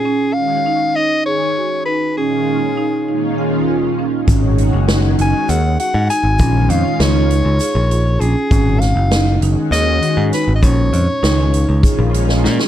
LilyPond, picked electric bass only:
\new Staff \with { instrumentName = "Picked electric bass" } { \clef bass \time 7/8 \key gis \dorian \tempo 4 = 99 r2. r8 | r2. r8 | gis,,8. fis,,8. fis,,16 r16 dis,8 r16 gis,16 r16 gis,,16 | ais,,8 eis,16 r16 cis,8. cis,16 r16 ais,,8. ais,,16 r16 |
gis,,8. fis,,8. fis,,16 r16 dis,8 r16 gis,16 r16 gis,,16 | ais,,8 eis,16 r16 cis,8. cis,16 r16 ais,,8. ais,16 r16 | }